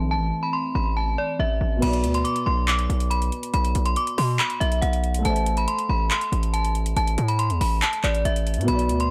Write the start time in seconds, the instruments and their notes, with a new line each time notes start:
Already playing: analog synth pad E3 A3 C4, grand piano A3 A4 C5 E5
0.00 808-style bass B1
0.11 synth bell A5
0.16 808-style bass A1
0.43 synth bell B5
0.53 synth bell C6
0.75 808-style bass A1, synth bell B5
0.97 synth bell A5
1.18 synth bell D5
1.39 808-style bass A1, synth bell E5
1.61 808-style bass A1
1.77 grand piano B2 B3
1.82 808-style bass B1, grand piano F#4, synth bell B5, closed hi-hat, crash
1.88 grand piano D5
1.93 closed hi-hat
2.04 808-style bass D2, closed hi-hat
2.14 synth bell C6, closed hi-hat
2.25 synth bell D6, closed hi-hat
2.36 closed hi-hat
2.46 808-style bass B1, synth bell C6
2.68 synth bell D6, clap, closed hi-hat
2.79 closed hi-hat
2.90 808-style bass B1, closed hi-hat
3.00 closed hi-hat
3.11 synth bell B5, closed hi-hat
3.22 closed hi-hat
3.32 closed hi-hat
3.43 closed hi-hat
3.54 808-style bass B1, synth bell B5, closed hi-hat
3.65 closed hi-hat
3.75 808-style bass B1, closed hi-hat
3.86 synth bell C6, closed hi-hat
3.96 synth bell D6, closed hi-hat
4.07 closed hi-hat
4.18 808-style bass B2, synth bell C6, open hi-hat
4.39 synth bell B5, clap, closed hi-hat
4.50 closed hi-hat
4.60 808-style bass B1, synth bell E5, closed hi-hat
4.72 closed hi-hat
4.82 808-style bass B1, synth bell F#5, closed hi-hat
4.93 closed hi-hat
5.04 closed hi-hat
5.14 closed hi-hat
5.19 grand piano A3 A4
5.25 808-style bass A1, grand piano C5, synth bell A5, closed hi-hat
5.30 grand piano E5
5.36 closed hi-hat
5.46 closed hi-hat
5.57 synth bell B5, closed hi-hat
5.68 synth bell C6, closed hi-hat
5.79 closed hi-hat
5.89 808-style bass A1, synth bell B5
6.11 synth bell C6, clap, closed hi-hat
6.21 closed hi-hat
6.32 808-style bass A1, closed hi-hat
6.43 closed hi-hat
6.54 synth bell A5, closed hi-hat
6.65 closed hi-hat
6.75 closed hi-hat
6.86 closed hi-hat
6.97 808-style bass A1, synth bell A5, closed hi-hat
7.08 closed hi-hat
7.18 808-style bass A2, closed hi-hat
7.28 synth bell B5, closed hi-hat
7.39 synth bell C6, closed hi-hat
7.50 808-style bass E2, closed hi-hat
7.61 808-style bass A1, synth bell B5, open hi-hat
7.82 synth bell A5, clap, closed hi-hat
7.93 closed hi-hat
8.04 808-style bass A1, synth bell D5, clap, closed hi-hat
8.15 closed hi-hat
8.25 808-style bass A1, synth bell E5, closed hi-hat
8.36 closed hi-hat
8.47 closed hi-hat
8.54 808-style bass A2, closed hi-hat
8.61 grand piano B2, closed hi-hat
8.66 808-style bass B1, grand piano B3 F#4, synth bell B5, closed hi-hat
8.73 grand piano D5
8.79 closed hi-hat
8.89 808-style bass D2, closed hi-hat
9.00 synth bell C6, closed hi-hat